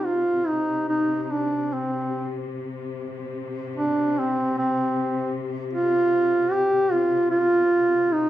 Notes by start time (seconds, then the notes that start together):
Already playing: C3
0.05 F4
0.47 D#4
0.89 D#4
1.22 D#4
1.31 D4
1.73 C4
3.76 D4
4.19 C4
4.58 C4
5.73 F4
6.51 G4
6.92 F4
7.31 F4
8.12 D#4